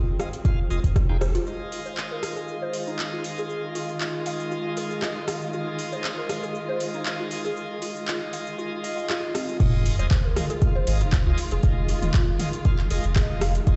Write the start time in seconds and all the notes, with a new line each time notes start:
Already playing: D#3 G#3 C4
0.19 G#3 F4 D#5 F5, cross-stick, cabasa
0.33 closed hi-hat, cabasa
0.45 G#3 F4 F5, kick, closed hi-hat, cabasa
0.70 F1 G#3 F4 D#5, cabasa
0.84 F1, kick, closed hi-hat, cabasa
0.96 F4, kick, cross-stick, closed hi-hat, cabasa
1.09 G#3 D#4 F4 G5
1.21 C5, cross-stick, cabasa
1.35 F4, closed hi-hat, cabasa
1.46 D#3 G#3 F4 D#5, cabasa
1.72 open hi-hat, cabasa
1.86 C5, cabasa
1.97 clap, cabasa
2.11 A#4
2.23 cross-stick, open hi-hat, cabasa
2.36 G#4, cabasa
2.48 cabasa
2.62 C5
2.73 open hi-hat, cabasa
2.87 D#4, cabasa
2.99 clap, cabasa
3.13 F4
3.24 open hi-hat, cabasa
3.38 G#4, cabasa
3.50 cabasa
3.75 F4, open hi-hat, cabasa
3.89 cabasa
4.01 F4, clap, cabasa
4.26 F5, open hi-hat, cabasa
4.40 cabasa
4.52 F4, cabasa
4.77 G#4, open hi-hat, cabasa
4.91 cabasa
5.02 D#5, cross-stick, clap, cabasa
5.28 F5, cross-stick, open hi-hat, cabasa
5.42 cabasa
5.53 G#3 F4 D#5, cabasa
5.79 open hi-hat, cabasa
5.92 C5, cabasa
6.04 clap, cabasa
6.18 A#4
6.29 cross-stick, open hi-hat, cabasa
6.43 G#4, cabasa
6.55 cabasa
6.69 C5
6.80 open hi-hat, cabasa
6.94 D#4, cabasa
7.06 clap, cabasa
7.20 F4
7.31 open hi-hat, cabasa
7.45 G#4, cabasa
7.57 cabasa
7.82 F4, open hi-hat, cabasa
7.96 cabasa
8.08 F4, clap, cabasa
8.33 F5, open hi-hat, cabasa
8.47 cabasa
8.58 F4, swell, cabasa
8.83 D#5, open hi-hat, cabasa
8.97 F5, cabasa
9.09 F4, cross-stick, clap, cabasa
9.34 C4, cross-stick, open hi-hat, cabasa
9.49 cabasa
9.60 F1 D#3 G#3 F4 D#5, kick, closed hi-hat, crash, sub drop, cabasa
9.86 open hi-hat, cabasa
9.99 D#1 G#3 F4 C5 D#5, closed hi-hat, cabasa
10.11 kick, clap, closed hi-hat, cabasa
10.25 A#4
10.36 G#3 F4 D#5, cross-stick, open hi-hat, mid tom, cabasa
10.50 G#4, closed hi-hat, cabasa
10.62 G#3 F4 F5, kick, closed hi-hat, cabasa
10.76 C5
10.87 G#1 G#3 F4 D#5, open hi-hat, cabasa
11.01 F1 D#4, closed hi-hat, cabasa
11.12 kick, clap, closed hi-hat, cabasa
11.26 C2 G#3 F4 D#5
11.38 open hi-hat, cabasa
11.51 F1 G#4, closed hi-hat, cabasa
11.63 F1 G#3 F4 D#5, kick, closed hi-hat, cabasa
11.89 F4, open hi-hat, cabasa
12.02 D#1 G#3 F4 D#5, closed hi-hat, mid tom, cabasa
12.14 F4, kick, clap, closed hi-hat, cabasa
12.39 G#3 F4 D#5 F5, open hi-hat, mid tom, cabasa
12.53 closed hi-hat, cabasa
12.65 G#3 F4 F5, kick, closed hi-hat, cabasa
12.79 clap
12.90 F1 G#3 F4 G#4 D#5, open hi-hat, cabasa
13.04 F1, closed hi-hat, cabasa
13.16 D#5, kick, cross-stick, clap, open hi-hat, cabasa
13.30 G#3 F4 D#5
13.41 F5, cross-stick, open hi-hat, cabasa
13.55 closed hi-hat, cabasa
13.67 F1 G#3 D#4 F4 D#5, kick, closed hi-hat, cabasa